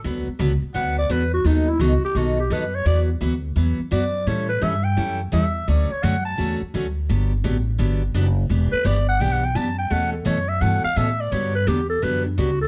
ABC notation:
X:1
M:4/4
L:1/16
Q:"Swing" 1/4=170
K:D
V:1 name="Clarinet"
z8 f2 d2 B2 F2 | ^D2 E2 F2 G2 F2 G2 B2 c2 | d2 z8 z2 d4 | c2 B2 e2 g4 z2 e4 |
d2 c2 f2 a4 z6 | z16 | z2 B2 d2 f2 (3g2 f2 g2 a2 g2 | f2 A2 c2 e2 f2 =f2 e2 d2 |
c2 B2 G2 A2 B2 D2 F2 A2 |]
V:2 name="Steel-string acoustic guitar"
[D,F,B,FB]2 z2 [D,F,B,FB] z3 [D,F,B,FB]2 z2 [D,F,B,FB] z3 | [^D,F,B,^DA]2 z2 [D,F,B,DA] z3 [D,F,B,DA]2 z2 [D,F,B,DA] z3 | [E,F,B,FB]2 z2 [E,F,B,FB] z3 [E,F,B,FB]2 z2 [E,F,B,FB] z3 | [E,G,CEA]2 z2 [E,G,CEA] z3 [E,G,CEA]2 z2 [E,G,CEA] z3 |
[D,F,A,CF]2 z2 [D,F,A,CF] z3 [D,F,A,CF]2 z2 [D,F,A,CF] z3 | [D,F,B,DG]2 z2 [D,F,B,DG] z3 [D,F,B,DG]2 z2 [D,F,B,DG] z3 | [E,B,DG]2 z2 [E,B,DG] z3 [E,B,DG]2 z2 [E,B,DG] z3 | [B,,E,A,CA]2 z2 [B,,E,A,CA] z3 [B,,E,A,CA]2 z2 [B,,E,A,CA] z3 |
[D,F,B,DG]2 z2 [D,F,B,DG] z3 [D,F,B,DG]2 z2 [D,F,B,DG] z3 |]
V:3 name="Upright bass" clef=bass
D,,2 z2 C,,2 z2 D,,4 E,,4 | ^D,,4 C,,2 z2 B,,,4 F,,4 | E,,4 D,,4 E,,2 z2 F,,4 | A,,4 G,,4 F,,4 E,,4 |
D,,2 z2 F,,4 E,,2 z2 D,,4 | G,,,4 A,,,4 G,,,4 F,,,4 | E,,,2 z2 G,,,4 B,,,4 F,,4 | E,,4 F,,4 G,,2 z2 A,,4 |
G,,4 E,,4 F,,4 C,,4 |]